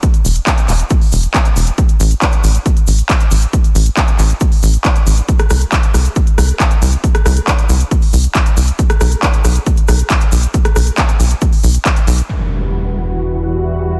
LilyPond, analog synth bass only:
\new Staff \with { instrumentName = "Analog synth bass" } { \clef bass \time 4/4 \key e \minor \tempo 4 = 137 r8 e,,8 r8 e,,8 r8 e,,8 r8 e,,8 | r8 a,,8 r8 a,,8 r8 a,,8 r8 a,,8 | r8 a,,8 r8 a,,8 r8 a,,8 r8 a,,8 | r8 c,8 r8 c,8 r8 c,8 r8 c,8 |
r8 c,8 r8 c,8 r8 c,8 r8 c,8 | r8 b,,8 r8 b,,8 r8 b,,8 r8 b,,8 | r8 b,,8 r8 b,,8 r8 b,,8 r8 b,,8 | r1 | }